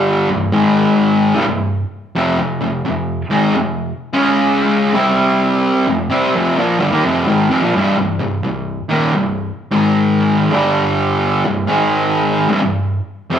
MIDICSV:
0, 0, Header, 1, 2, 480
1, 0, Start_track
1, 0, Key_signature, -3, "minor"
1, 0, Tempo, 696864
1, 1493, Time_signature, 4, 2, 24, 8
1, 9224, End_track
2, 0, Start_track
2, 0, Title_t, "Distorted electric guitar"
2, 0, Program_c, 0, 30
2, 0, Note_on_c, 0, 43, 88
2, 0, Note_on_c, 0, 50, 111
2, 0, Note_on_c, 0, 55, 106
2, 198, Note_off_c, 0, 43, 0
2, 199, Note_off_c, 0, 50, 0
2, 200, Note_off_c, 0, 55, 0
2, 207, Note_on_c, 0, 36, 80
2, 207, Note_on_c, 0, 43, 75
2, 358, Note_off_c, 0, 36, 0
2, 361, Note_on_c, 0, 44, 103
2, 364, Note_off_c, 0, 43, 0
2, 367, Note_on_c, 0, 51, 102
2, 371, Note_on_c, 0, 56, 118
2, 922, Note_off_c, 0, 44, 0
2, 925, Note_off_c, 0, 51, 0
2, 927, Note_off_c, 0, 56, 0
2, 927, Note_on_c, 0, 36, 91
2, 931, Note_on_c, 0, 43, 108
2, 996, Note_off_c, 0, 36, 0
2, 998, Note_off_c, 0, 43, 0
2, 1004, Note_on_c, 0, 36, 65
2, 1006, Note_on_c, 0, 43, 81
2, 1260, Note_off_c, 0, 36, 0
2, 1261, Note_off_c, 0, 43, 0
2, 1483, Note_on_c, 0, 41, 98
2, 1488, Note_on_c, 0, 48, 112
2, 1636, Note_off_c, 0, 41, 0
2, 1638, Note_off_c, 0, 48, 0
2, 1645, Note_on_c, 0, 41, 71
2, 1647, Note_on_c, 0, 48, 76
2, 1787, Note_off_c, 0, 41, 0
2, 1792, Note_off_c, 0, 48, 0
2, 1795, Note_on_c, 0, 41, 69
2, 1800, Note_on_c, 0, 48, 74
2, 1933, Note_off_c, 0, 41, 0
2, 1936, Note_off_c, 0, 48, 0
2, 1963, Note_on_c, 0, 41, 78
2, 1968, Note_on_c, 0, 48, 89
2, 2220, Note_off_c, 0, 41, 0
2, 2222, Note_off_c, 0, 48, 0
2, 2277, Note_on_c, 0, 44, 88
2, 2281, Note_on_c, 0, 51, 113
2, 2284, Note_on_c, 0, 56, 107
2, 2442, Note_off_c, 0, 44, 0
2, 2445, Note_off_c, 0, 51, 0
2, 2446, Note_off_c, 0, 56, 0
2, 2448, Note_on_c, 0, 41, 55
2, 2450, Note_on_c, 0, 48, 74
2, 2702, Note_off_c, 0, 41, 0
2, 2704, Note_off_c, 0, 48, 0
2, 2845, Note_on_c, 0, 49, 101
2, 2850, Note_on_c, 0, 56, 96
2, 2853, Note_on_c, 0, 61, 115
2, 3399, Note_off_c, 0, 49, 0
2, 3402, Note_on_c, 0, 48, 100
2, 3404, Note_off_c, 0, 56, 0
2, 3407, Note_on_c, 0, 55, 119
2, 3409, Note_off_c, 0, 61, 0
2, 3411, Note_on_c, 0, 60, 109
2, 4035, Note_off_c, 0, 48, 0
2, 4037, Note_off_c, 0, 55, 0
2, 4040, Note_off_c, 0, 60, 0
2, 4046, Note_on_c, 0, 41, 65
2, 4050, Note_on_c, 0, 48, 71
2, 4191, Note_off_c, 0, 48, 0
2, 4199, Note_on_c, 0, 48, 88
2, 4205, Note_off_c, 0, 41, 0
2, 4208, Note_on_c, 0, 55, 111
2, 4209, Note_on_c, 0, 60, 101
2, 4363, Note_off_c, 0, 48, 0
2, 4367, Note_off_c, 0, 55, 0
2, 4368, Note_off_c, 0, 60, 0
2, 4374, Note_on_c, 0, 41, 79
2, 4379, Note_on_c, 0, 48, 94
2, 4521, Note_off_c, 0, 41, 0
2, 4523, Note_off_c, 0, 48, 0
2, 4529, Note_on_c, 0, 46, 86
2, 4536, Note_on_c, 0, 53, 106
2, 4676, Note_off_c, 0, 46, 0
2, 4679, Note_on_c, 0, 43, 86
2, 4680, Note_off_c, 0, 53, 0
2, 4683, Note_on_c, 0, 50, 105
2, 4760, Note_off_c, 0, 43, 0
2, 4761, Note_off_c, 0, 50, 0
2, 4764, Note_on_c, 0, 51, 99
2, 4768, Note_on_c, 0, 58, 103
2, 4844, Note_off_c, 0, 51, 0
2, 4846, Note_off_c, 0, 58, 0
2, 4847, Note_on_c, 0, 41, 95
2, 4853, Note_on_c, 0, 48, 93
2, 4997, Note_off_c, 0, 41, 0
2, 5000, Note_off_c, 0, 48, 0
2, 5008, Note_on_c, 0, 44, 90
2, 5011, Note_on_c, 0, 51, 99
2, 5156, Note_off_c, 0, 44, 0
2, 5157, Note_off_c, 0, 51, 0
2, 5165, Note_on_c, 0, 41, 100
2, 5168, Note_on_c, 0, 48, 119
2, 5243, Note_off_c, 0, 41, 0
2, 5244, Note_off_c, 0, 48, 0
2, 5249, Note_on_c, 0, 46, 83
2, 5253, Note_on_c, 0, 53, 100
2, 5326, Note_off_c, 0, 46, 0
2, 5328, Note_off_c, 0, 53, 0
2, 5333, Note_on_c, 0, 36, 93
2, 5337, Note_on_c, 0, 43, 116
2, 5480, Note_off_c, 0, 36, 0
2, 5481, Note_off_c, 0, 43, 0
2, 5493, Note_on_c, 0, 36, 66
2, 5494, Note_on_c, 0, 43, 73
2, 5640, Note_off_c, 0, 36, 0
2, 5642, Note_off_c, 0, 43, 0
2, 5648, Note_on_c, 0, 36, 72
2, 5650, Note_on_c, 0, 43, 73
2, 5778, Note_off_c, 0, 36, 0
2, 5779, Note_off_c, 0, 43, 0
2, 5818, Note_on_c, 0, 36, 77
2, 5819, Note_on_c, 0, 43, 83
2, 6065, Note_off_c, 0, 36, 0
2, 6066, Note_off_c, 0, 43, 0
2, 6126, Note_on_c, 0, 39, 100
2, 6129, Note_on_c, 0, 46, 112
2, 6134, Note_on_c, 0, 51, 107
2, 6285, Note_off_c, 0, 39, 0
2, 6286, Note_off_c, 0, 46, 0
2, 6289, Note_off_c, 0, 51, 0
2, 6292, Note_on_c, 0, 36, 60
2, 6298, Note_on_c, 0, 43, 67
2, 6542, Note_off_c, 0, 36, 0
2, 6545, Note_off_c, 0, 43, 0
2, 6690, Note_on_c, 0, 44, 98
2, 6695, Note_on_c, 0, 51, 105
2, 6700, Note_on_c, 0, 56, 103
2, 7245, Note_off_c, 0, 44, 0
2, 7247, Note_off_c, 0, 51, 0
2, 7247, Note_on_c, 0, 43, 109
2, 7249, Note_off_c, 0, 56, 0
2, 7249, Note_on_c, 0, 50, 106
2, 7256, Note_on_c, 0, 55, 119
2, 7875, Note_off_c, 0, 43, 0
2, 7876, Note_off_c, 0, 50, 0
2, 7879, Note_off_c, 0, 55, 0
2, 7886, Note_on_c, 0, 36, 76
2, 7888, Note_on_c, 0, 43, 71
2, 8038, Note_off_c, 0, 36, 0
2, 8040, Note_on_c, 0, 44, 97
2, 8043, Note_off_c, 0, 43, 0
2, 8046, Note_on_c, 0, 51, 98
2, 8049, Note_on_c, 0, 56, 105
2, 8598, Note_off_c, 0, 44, 0
2, 8601, Note_off_c, 0, 51, 0
2, 8602, Note_off_c, 0, 56, 0
2, 8603, Note_on_c, 0, 36, 95
2, 8607, Note_on_c, 0, 43, 104
2, 8681, Note_off_c, 0, 36, 0
2, 8683, Note_off_c, 0, 43, 0
2, 8692, Note_on_c, 0, 36, 69
2, 8693, Note_on_c, 0, 43, 70
2, 8941, Note_off_c, 0, 36, 0
2, 8942, Note_off_c, 0, 43, 0
2, 9163, Note_on_c, 0, 41, 103
2, 9172, Note_on_c, 0, 48, 112
2, 9224, Note_off_c, 0, 41, 0
2, 9224, Note_off_c, 0, 48, 0
2, 9224, End_track
0, 0, End_of_file